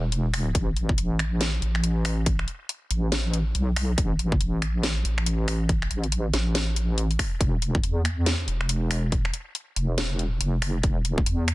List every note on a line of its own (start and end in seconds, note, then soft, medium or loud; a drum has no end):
0.00 0.36 E1 loud
0.12 closed hi-hat medium
0.34 0.54 D#1 loud
0.34 finger snap medium
0.34 open hi-hat medium
0.55 0.96 A1 medium
0.55 kick loud
0.55 closed hi-hat medium
0.77 closed hi-hat soft
0.89 kick loud
0.98 1.61 A1 loud
0.98 closed hi-hat medium
1.19 finger snap medium
1.19 closed hi-hat medium
1.41 snare loud
1.41 closed hi-hat medium
1.62 2.46 A1 loud
1.62 closed hi-hat medium
1.75 finger snap medium
1.84 closed hi-hat medium
2.05 finger snap medium
2.05 open hi-hat medium
2.26 kick loud
2.26 closed hi-hat medium
2.39 finger snap medium
2.48 closed hi-hat soft
2.69 closed hi-hat medium
2.91 3.54 A1 loud
2.91 closed hi-hat medium
3.12 snare loud
3.12 closed hi-hat medium
3.34 closed hi-hat medium
3.55 3.96 B1 loud
3.55 closed hi-hat medium
3.76 finger snap medium
3.76 open hi-hat medium
3.98 4.39 A1 loud
3.98 kick loud
3.98 closed hi-hat medium
4.19 closed hi-hat soft
4.32 kick loud
4.41 5.04 A1 loud
4.41 closed hi-hat medium
4.62 finger snap medium
4.62 closed hi-hat medium
4.83 snare loud
4.83 closed hi-hat medium
5.05 5.89 A1 loud
5.05 closed hi-hat medium
5.18 finger snap medium
5.26 closed hi-hat medium
5.48 finger snap medium
5.48 open hi-hat medium
5.69 kick loud
5.69 closed hi-hat medium
5.82 finger snap medium
5.91 6.32 A1 loud
5.91 closed hi-hat medium
6.04 closed hi-hat soft
6.12 closed hi-hat medium
6.33 7.18 A1 loud
6.33 snare medium
6.33 closed hi-hat medium
6.55 snare loud
6.55 closed hi-hat medium
6.76 closed hi-hat medium
6.98 closed hi-hat medium
7.11 closed hi-hat soft
7.19 finger snap medium
7.19 kick medium
7.19 open hi-hat loud
7.41 7.82 E1 medium
7.41 kick loud
7.41 closed hi-hat medium
7.62 closed hi-hat medium
7.75 kick loud
7.83 8.46 E2 loud
7.83 closed hi-hat medium
8.05 finger snap medium
8.05 closed hi-hat medium
8.26 snare loud
8.26 closed hi-hat medium
8.48 9.32 E1 loud
8.48 closed hi-hat medium
8.61 finger snap medium
8.69 closed hi-hat medium
8.91 finger snap medium
8.91 open hi-hat medium
9.12 kick loud
9.12 closed hi-hat medium
9.25 finger snap medium
9.34 closed hi-hat medium
9.55 closed hi-hat medium
9.76 10.39 E1 loud
9.76 closed hi-hat medium
9.98 snare loud
9.98 closed hi-hat medium
10.19 closed hi-hat medium
10.41 10.82 F1 loud
10.41 closed hi-hat medium
10.62 finger snap medium
10.62 open hi-hat medium
10.83 11.25 E1 loud
10.83 kick loud
10.83 closed hi-hat medium
11.05 closed hi-hat medium
11.18 kick loud
11.26 11.54 E2 loud
11.26 closed hi-hat medium
11.48 finger snap medium
11.48 closed hi-hat medium